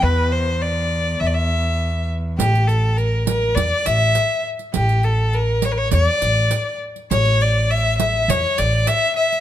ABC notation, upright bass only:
X:1
M:4/4
L:1/16
Q:1/4=102
K:none
V:1 name="Upright bass" clef=bass
E,,8 E,,8 | A,,,8 E,, z A,,,2 z4 | A,,,8 E,, z A,,,2 z4 | A,,,8 E,, z A,,,2 z4 |]